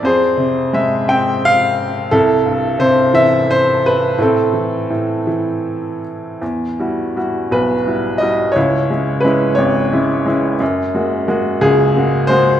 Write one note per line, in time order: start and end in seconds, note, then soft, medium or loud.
0.03 2.08 F2 medium
0.03 1.06 G#4 medium
0.03 0.77 C5 medium
0.37 1.74 C3 soft
0.73 2.08 G#3 medium
0.73 1.10 E5 medium
1.08 2.09 C4 medium
1.08 1.45 G5 medium
1.45 2.15 F5 loud
2.11 4.14 C2 medium
2.11 3.10 E4 medium
2.11 2.82 A4 medium
2.46 3.79 G2 medium
2.79 4.13 C3 medium
2.79 3.15 C5 medium
3.14 4.14 E3 medium
3.14 3.50 E5 loud
3.51 3.85 C5 loud
3.86 4.20 B4 medium
4.18 4.89 A2 medium
4.18 6.01 C4 medium
4.18 6.01 A4 medium
4.53 5.25 E3 soft
4.90 6.38 A2 medium
5.27 6.38 E3 medium
6.42 8.52 E2 medium
6.79 7.15 G3 soft
6.79 7.15 E4 soft
6.79 7.16 F#4 soft
7.16 7.72 G3 soft
7.16 7.73 E4 soft
7.16 7.73 F#4 soft
7.51 8.53 B1 medium
7.51 8.17 B4 medium
7.87 8.20 G3 soft
7.87 8.20 E4 soft
7.87 8.21 F#4 soft
8.18 8.49 G3 soft
8.18 8.49 E4 soft
8.18 8.50 F#4 medium
8.18 8.52 D#5 medium
8.52 8.90 E4 medium
8.52 9.25 C#5 medium
8.56 10.57 C#2 medium
8.90 9.23 G#3 soft
8.90 9.24 C#4 soft
8.90 9.24 E4 soft
9.21 9.54 B4 medium
9.25 9.79 G#3 medium
9.25 9.80 C#4 soft
9.25 9.80 E4 medium
9.55 10.57 G#1 medium
9.55 10.29 C#5 medium
9.93 10.24 G#3 soft
9.93 10.25 C#4 soft
9.93 10.26 E4 medium
10.26 10.53 G#3 medium
10.26 10.54 C#4 soft
10.26 10.54 E4 medium
10.60 12.60 F#2 medium
10.94 11.27 G#3 soft
10.94 11.26 A#3 soft
10.94 11.27 F#4 medium
11.28 11.83 G#3 medium
11.28 11.82 A#3 soft
11.28 11.83 F#4 medium
11.61 12.60 C#2 medium
11.61 12.32 G#4 medium
11.96 12.28 G#3 soft
11.96 12.29 A#3 soft
11.96 12.29 F#4 medium
12.27 12.58 G#3 medium
12.27 12.58 A#3 soft
12.27 12.58 F#4 medium
12.27 12.60 C5 loud